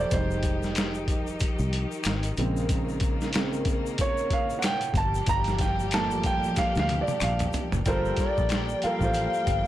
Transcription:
Already playing: F3 G4 A4 A#4 C5
0.00 D5
0.11 F1 D#3 G3 G#3 D#4 C5, kick, closed hi-hat, shaker
0.31 shaker
0.43 kick, closed hi-hat, shaker
0.63 snare, shaker
0.75 finger snap, snare, closed hi-hat, shaker
0.94 shaker
1.08 kick, closed hi-hat, shaker
1.27 shaker
1.40 muted fingered electric bass stroke, kick, closed hi-hat, shaker
1.59 C2, shaker
1.73 closed hi-hat
1.92 shaker
2.04 G#1, finger snap, snare, closed hi-hat, shaker
2.23 closed hi-hat, shaker
2.37 A#1 A#2 C#3 G#3 A#3 C4, closed hi-hat, shaker
2.56 shaker
2.69 kick, closed hi-hat, shaker
2.89 shaker
3.00 kick, closed hi-hat, shaker
3.21 snare, shaker
3.33 C#3 G#3 C4, finger snap, snare, closed hi-hat, shaker
3.53 shaker
3.65 kick, closed hi-hat, shaker
3.86 shaker
3.98 C#5, kick, closed hi-hat, shaker
4.18 shaker
4.30 F5, kick, closed hi-hat
4.50 shaker
4.59 F#5, finger snap, closed hi-hat, shaker
4.64 G5, snare
4.81 closed hi-hat, shaker
4.94 G1 F3 G3 G4 A5, kick, closed hi-hat, shaker
5.15 shaker
5.26 G1 A#5, kick, closed hi-hat, shaker
5.44 snare, closed hi-hat, shaker
5.58 G5, kick, snare, closed hi-hat, shaker
5.80 shaker
5.91 F3 A3 A#3 A5, finger snap, snare, closed hi-hat, shaker
6.11 shaker
6.24 G5, kick, closed hi-hat, shaker
6.43 shaker
6.56 F5, muted fingered electric bass stroke, kick, snare, closed hi-hat, shaker
6.75 D2, snare, shaker
6.80 F5
6.89 closed hi-hat, high tom
7.01 D5
7.08 high tom, shaker
7.20 A#1 F5, finger snap, closed hi-hat, mid tom, shaker
7.39 closed hi-hat, mid tom, shaker
7.53 closed hi-hat, floor tom, shaker
7.72 F#1, floor tom, shaker
7.86 G1 F3 G3 A#3 F4 A4 A#4 C5 G5, kick, closed hi-hat, shaker
8.05 shaker
8.17 D5, kick, snare, closed hi-hat, shaker
8.37 A#1, kick, shaker
8.49 finger snap, snare, closed hi-hat, shaker
8.69 shaker
8.82 G3 F4 A4 F5, muted fingered electric bass stroke, closed hi-hat, shaker
8.86 A#4
9.01 A1 G3 F4 A4 C5, kick, shaker
9.14 closed hi-hat, shaker
9.34 shaker
9.47 G1, kick, closed hi-hat, shaker

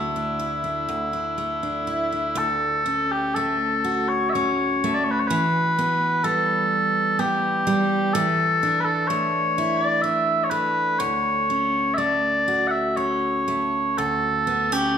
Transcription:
Already playing: D2 A3 D4 E4 F#4
0.16 D4
0.39 E4
0.64 D4
0.89 D2
1.13 D4
1.38 A3
1.63 D4
1.87 E4
2.12 D4
2.35 D2 A4
2.86 C#4
3.11 G4
3.35 A3 A4
3.84 F#4
4.08 C#5
4.30 C#5 E5
4.35 C#4
4.84 A3
4.94 D5
5.04 C#5
5.11 B4
5.20 C#5
5.27 E3 B4
5.79 B3
6.24 G3 A4
7.19 B3 G4
7.67 G3
8.13 E3 A4
8.63 D4
8.80 B4
8.84 A4
9.07 A3 C#5
9.58 E4
9.77 D5
10.02 D4 E5
10.44 C#5
10.50 A3 B4
10.99 D2 C#5
11.50 C#4
11.94 A3 D5 E5
12.48 F#4
12.67 E5 F#5
12.96 C#4 C#5
13.48 A3
13.98 D2 A4
14.47 B3
14.72 C#4 G4

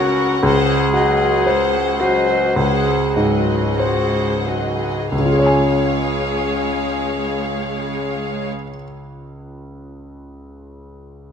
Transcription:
Already playing: C#3 C#4 F#4 A#4 C#5 F#5
0.42 C#2 G#3 G#4 C5 F#5
0.93 F#3 F#4 G#4 D#5
1.46 G#3 G#4 C5 F#5
2.00 F#3 F#4 G#4 C5 D#5
2.56 C#2 G#3 G#4 C5 F#5
3.16 G#2 F#3 F#4 G#4 D#5
3.78 G#3 F#4 G#4 C5 F#5
4.45 F#3 F#4 G#4 D#5
5.12 C#2 G#3 C#4 G#4 C#5 F5
5.19 C#3
5.26 F4
5.33 G#4
5.39 C#5
5.46 G#5

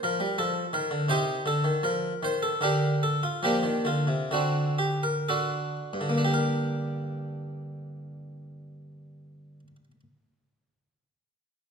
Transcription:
0.03 F3 A#4
0.20 G3
0.38 F3 A4
0.73 D#3 A#4
0.91 D3
1.08 C3 D#4 G4 C5
1.46 D3 A4
1.64 D#3
1.83 F3 A#4
2.23 D#3 C5
2.43 A4
2.61 D3 D4 G4 A#4
3.03 A4
3.23 F4
3.43 F3 A#3 D4 G4
3.63 D#3
3.85 D3 F4
4.07 C3
4.31 D3 C4 D4 F#4
4.79 G4
5.03 A#4
5.29 D4 F#4 A4
5.93 G2
6.01 D3
6.09 A#3
6.18 D4
6.25 G4
6.34 A#4

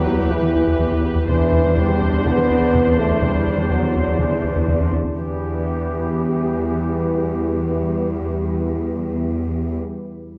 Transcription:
Already playing: E2 E3 F#3 B3 E4 G4 B4
0.07 E2 E4
0.19 E2 G3
0.30 E2 E3
0.43 E3 B3
0.55 E2 E4
0.68 E2
0.79 E2 E3
0.92 E2 E4
1.04 E2 E4
1.15 E2 E4
1.28 E2 C3 D3 E3 D4 C5 D5
1.40 E2
1.52 E2
1.65 E3 G3
1.77 E2 C3 G3
1.90 E3
2.01 E2 C4
2.13 E2 E3
2.25 E2 C3 B3
2.37 E3 G3
2.50 E2 C4
2.62 E2
2.74 E2 C3
2.86 E2 C4
2.98 E2 A3 C4
3.10 E2 C4
3.21 E2 C3 G3
3.35 E2
3.47 E2
3.58 E3 G3
3.70 E2 C3 F#3
3.83 E3
3.95 E2 C4
4.07 E2 E3
4.19 E2 C3 E3
4.31 E3 G3
4.44 E2 C4
4.56 E2
4.67 E2 C3
4.80 E2 C4
4.92 E2 C4
5.04 E2 C4
5.14 E2 E3 G3 B3 E4 G4 B4

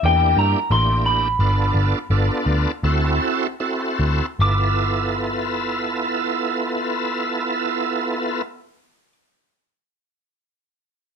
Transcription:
0.03 E2 A#3 D4 E4 G4 G5
0.37 G2 A#5
0.70 A1 A#3 D4 E4 G4 C6
1.06 B5
1.39 G1 B3 D4 F4 A4
1.74 G1
2.10 G1 B3 D4 F4 A4
2.46 D2
2.83 D2 C4 E4 F#4 A4
3.60 C4 E4 F#4 A4
3.99 D2
4.39 G1 B3 E4 F4 A4 D6

